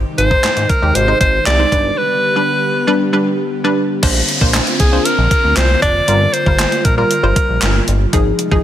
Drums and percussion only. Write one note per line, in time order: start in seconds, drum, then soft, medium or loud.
0.18 closed hi-hat medium
0.31 kick medium
0.44 snare medium
0.44 clap loud
0.44 closed hi-hat medium
0.57 closed hi-hat soft
0.69 kick medium
0.69 closed hi-hat medium
0.95 closed hi-hat medium
1.21 kick medium
1.21 closed hi-hat medium
1.46 snare loud
1.46 clap loud
1.46 closed hi-hat medium
1.72 kick medium
1.72 closed hi-hat medium
4.03 kick loud
4.03 closed hi-hat medium
4.03 crash loud
4.29 closed hi-hat medium
4.41 kick loud
4.54 snare medium
4.54 clap loud
4.54 clap medium
4.54 closed hi-hat medium
4.67 closed hi-hat medium
4.80 kick medium
4.80 closed hi-hat medium
5.05 closed hi-hat medium
5.31 kick loud
5.31 closed hi-hat medium
5.57 snare loud
5.57 clap loud
5.57 clap medium
5.57 closed hi-hat medium
5.82 kick medium
5.82 closed hi-hat medium
6.08 closed hi-hat medium
6.34 closed hi-hat medium
6.46 kick loud
6.59 snare medium
6.59 clap loud
6.59 clap medium
6.59 closed hi-hat medium
6.72 closed hi-hat medium
6.85 kick medium
6.85 closed hi-hat medium
7.11 closed hi-hat loud
7.36 kick loud
7.36 closed hi-hat medium
7.62 snare loud
7.62 clap loud
7.62 clap medium
7.62 closed hi-hat medium
7.88 closed hi-hat medium
8.13 kick loud
8.13 closed hi-hat medium
8.39 closed hi-hat medium
8.52 kick loud